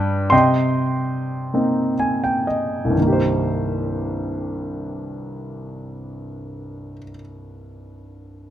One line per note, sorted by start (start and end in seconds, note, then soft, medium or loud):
0.00 0.29 G2 soft
0.00 0.29 B4 soft
0.00 0.29 D5 soft
0.00 0.32 G5 medium
0.30 2.93 C3 soft
0.30 1.95 D#5 soft
0.30 1.94 G5 soft
0.30 1.93 C6 medium
1.54 2.94 A#3 soft
1.54 2.94 C4 soft
1.54 2.94 D#4 soft
2.00 2.21 G#5 soft
2.24 2.46 G5 soft
2.47 2.94 D#5 soft
2.85 6.93 C2 soft
2.90 6.98 G2 soft
2.96 7.04 D#3 soft
3.01 7.09 A#3 soft
3.07 7.15 G4 soft
3.13 7.21 C5 soft